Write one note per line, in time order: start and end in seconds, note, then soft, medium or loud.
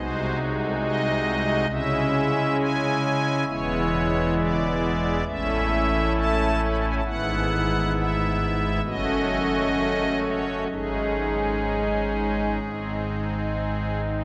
0.00 1.66 C2 medium
0.00 1.66 C3 medium
0.00 1.66 G#3 medium
0.00 1.66 D#4 medium
0.00 1.66 F#4 medium
0.00 0.38 C5 loud
0.46 0.54 C#5 loud
0.55 0.63 C5 loud
0.64 0.72 A4 loud
0.72 0.80 C5 loud
0.81 1.67 D#5 loud
1.70 3.44 C#3 medium
1.70 3.44 G#3 medium
1.70 3.44 C#4 medium
1.70 3.44 E4 medium
1.70 2.57 E5 loud
2.59 3.45 G#5 loud
3.47 5.22 E1 medium
3.47 5.23 E2 medium
3.47 5.23 G#3 medium
3.47 5.23 B3 medium
3.47 5.23 E4 medium
3.47 4.34 C#5 loud
4.38 5.24 D5 loud
5.27 7.01 A1 medium
5.27 7.01 A2 medium
5.27 7.01 A3 medium
5.27 7.01 C#4 medium
5.27 7.01 E4 medium
5.27 6.13 E5 loud
6.16 6.61 A5 loud
6.68 6.76 B5 loud
6.78 6.86 A5 loud
6.87 6.95 G#5 loud
6.96 7.03 A5 loud
7.05 8.80 G#1 medium
7.05 8.80 G#2 medium
7.05 8.80 B3 medium
7.05 8.80 E4 medium
7.05 7.92 F#5 loud
7.95 8.82 E5 loud
8.84 10.67 F#1 medium
8.84 10.67 F#2 medium
8.84 10.67 A3 medium
8.84 10.67 C#4 medium
8.84 10.67 F#4 medium
8.84 10.19 D#5 loud
10.24 10.64 C#5 loud
10.71 12.59 G#1 medium
10.71 12.59 G#2 medium
10.71 12.59 G#3 soft
10.71 12.59 C#4 medium
10.71 12.59 D#4 soft
10.71 14.01 G#4 loud
12.63 14.24 G#1 medium
12.63 14.24 G#2 medium
12.63 14.24 G#3 soft
12.63 14.24 C4 soft
12.63 14.24 D#4 soft